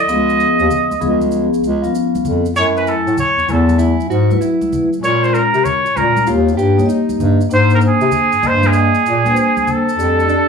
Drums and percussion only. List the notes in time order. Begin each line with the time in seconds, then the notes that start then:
0.09 maracas
0.29 maracas
0.40 maracas
0.59 maracas
0.71 low conga, maracas
0.91 maracas
1.01 high conga, low conga, maracas
1.21 high conga, maracas
1.31 maracas
1.54 maracas
1.64 maracas
1.84 high conga, maracas
1.95 maracas
2.15 high conga, maracas
2.25 low conga, maracas
2.46 maracas
2.56 maracas
2.77 maracas
2.87 maracas
3.07 maracas
3.17 low conga, maracas
3.39 maracas
3.49 high conga, low conga, maracas
3.69 high conga, maracas
3.79 maracas
4.00 maracas
4.11 maracas
4.31 high conga, maracas
4.41 maracas
4.62 high conga, maracas
4.73 low conga, maracas
4.93 maracas
5.04 maracas
5.24 maracas
5.35 maracas
5.54 maracas
5.65 low conga, maracas
5.86 maracas
5.97 high conga, low conga, maracas
6.17 high conga, maracas
6.27 maracas
6.49 maracas
6.59 maracas
6.79 high conga, maracas
6.89 maracas
7.09 high conga, maracas
7.20 low conga, maracas
7.41 maracas
7.51 maracas
7.70 maracas
7.81 maracas
8.01 maracas
8.11 low conga, maracas
8.32 maracas
8.43 high conga, low conga, maracas
8.63 high conga, maracas
8.73 maracas
8.95 maracas
9.06 maracas
9.26 high conga, maracas
9.36 maracas
9.57 high conga, maracas
9.67 low conga, maracas
9.89 maracas
9.99 maracas
10.19 maracas
10.29 maracas